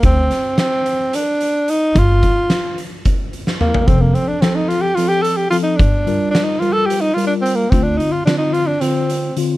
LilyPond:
<<
  \new Staff \with { instrumentName = "Tenor saxophone" } { \time 7/8 \key g \minor \tempo 4 = 109 c'4 c'4 d'4 ees'8 | f'4. r4. bes8 | c'16 bes16 c'16 d'16 c'16 ees'16 f'16 g'16 f'16 g'16 a'16 g'16 f'16 ees'16 | d'4 d'16 ees'16 f'16 a'16 g'16 ees'16 f'16 d'16 c'16 bes16 |
c'16 d'16 ees'16 f'16 d'16 ees'16 f'16 d'16 c'4 r8 | }
  \new Staff \with { instrumentName = "Tine electric piano" } { \time 7/8 \key g \minor r2. r8 | r2. r8 | <f c' a'>4 <f c' a'>4 <f c' a'>4 <f c' a'>8 | r8 <g f' bes'>4 <g f' bes'>4 <g f' bes'>4 |
<d c' f'>4 <d c' f'>4 <d c' f'>4 <d c' f'>8 | }
  \new Staff \with { instrumentName = "Upright bass" } { \clef bass \time 7/8 \key g \minor d,8 r2. | g,,8 r2. | f,,8 r2. | g,,8 r2. |
d,8 r2. | }
  \new DrumStaff \with { instrumentName = "Drums" } \drummode { \time 7/8 <hh bd>8 <hh sn>8 <hh sn>8 hh8 hh8 hh8 hh8 | <hh bd>8 <hh bd>8 <hh sn>8 hh8 <hh bd>8 hh16 sn16 toml16 tomfh16 | <hh bd>8 hh8 <hh sn>8 hh8 hh8 hh8 hh8 | <hh bd>8 hh8 <hh sn>8 hh8 hh8 hh8 hh8 |
<hh bd>8 hh8 <hh sn>8 hh8 hh8 hh8 hh8 | }
>>